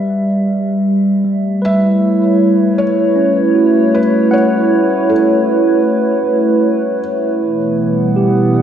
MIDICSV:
0, 0, Header, 1, 5, 480
1, 0, Start_track
1, 0, Tempo, 769231
1, 775, Time_signature, 4, 2, 24, 8
1, 5380, End_track
2, 0, Start_track
2, 0, Title_t, "Felt piano"
2, 0, Program_c, 0, 0
2, 1029, Note_on_c, 0, 76, 100
2, 1736, Note_on_c, 0, 73, 89
2, 1763, Note_off_c, 0, 76, 0
2, 2462, Note_on_c, 0, 71, 83
2, 2477, Note_off_c, 0, 73, 0
2, 2704, Note_on_c, 0, 73, 82
2, 2706, Note_off_c, 0, 71, 0
2, 3179, Note_on_c, 0, 69, 66
2, 3194, Note_off_c, 0, 73, 0
2, 4352, Note_off_c, 0, 69, 0
2, 5380, End_track
3, 0, Start_track
3, 0, Title_t, "Tine electric piano"
3, 0, Program_c, 1, 4
3, 0, Control_c, 1, 64, 127
3, 0, Note_on_c, 1, 71, 57
3, 777, Note_on_c, 1, 55, 52
3, 784, Control_c, 1, 64, 0
3, 788, Note_off_c, 1, 71, 0
3, 892, Control_c, 1, 64, 127
3, 1010, Note_on_c, 1, 71, 55
3, 1961, Note_off_c, 1, 55, 0
3, 1970, Note_on_c, 1, 61, 53
3, 2198, Note_off_c, 1, 71, 0
3, 2211, Note_on_c, 1, 66, 46
3, 2429, Note_off_c, 1, 61, 0
3, 2690, Note_on_c, 1, 78, 63
3, 3398, Note_off_c, 1, 66, 0
3, 3878, Note_off_c, 1, 78, 0
3, 4624, Control_c, 1, 64, 0
3, 4740, Control_c, 1, 64, 127
3, 5094, Note_on_c, 1, 67, 47
3, 5331, Note_on_c, 1, 55, 56
3, 5380, Note_off_c, 1, 55, 0
3, 5380, Note_off_c, 1, 67, 0
3, 5380, End_track
4, 0, Start_track
4, 0, Title_t, "Ambient pad"
4, 0, Program_c, 2, 92
4, 0, Note_on_c, 2, 55, 70
4, 0, Note_on_c, 2, 74, 76
4, 0, Note_on_c, 2, 76, 62
4, 775, Note_off_c, 2, 74, 0
4, 776, Note_on_c, 2, 57, 61
4, 990, Note_on_c, 2, 64, 66
4, 1140, Note_on_c, 2, 73, 85
4, 1261, Note_on_c, 2, 71, 61
4, 2192, Note_off_c, 2, 76, 0
4, 2312, Note_off_c, 2, 55, 0
4, 4612, Note_off_c, 2, 73, 0
4, 4616, Note_off_c, 2, 57, 0
4, 4621, Note_on_c, 2, 52, 82
4, 4716, Note_on_c, 2, 59, 78
4, 4842, Note_on_c, 2, 55, 81
4, 4881, Note_on_c, 2, 78, 84
4, 5380, Note_off_c, 2, 52, 0
4, 5380, Note_off_c, 2, 55, 0
4, 5380, Note_off_c, 2, 59, 0
4, 5380, Note_off_c, 2, 64, 0
4, 5380, Note_off_c, 2, 71, 0
4, 5380, Note_off_c, 2, 78, 0
4, 5380, End_track
5, 0, Start_track
5, 0, Title_t, "Synth drone"
5, 0, Program_c, 3, 95
5, 4631, Note_on_c, 3, 47, 76
5, 4635, Note_on_c, 3, 52, 76
5, 5380, Note_off_c, 3, 47, 0
5, 5380, Note_off_c, 3, 52, 0
5, 5380, End_track
0, 0, End_of_file